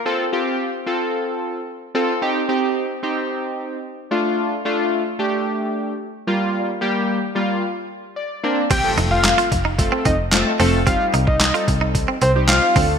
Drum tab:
CC |----------------|----------------|----------------|----------------|
HH |----------------|----------------|----------------|----------------|
CP |----------------|----------------|----------------|----------------|
SD |----------------|----------------|----------------|----------------|
BD |----------------|----------------|----------------|----------------|

CC |x---------------|----------------|
HH |x-x-xxx-x-x-x-o-|x-x-xxx-x-x-x-o-|
CP |----x-------x---|----x-------x---|
SD |----o-------o---|----o-------o---|
BD |o-----o-o-o-----|o--o--o-o-----o-|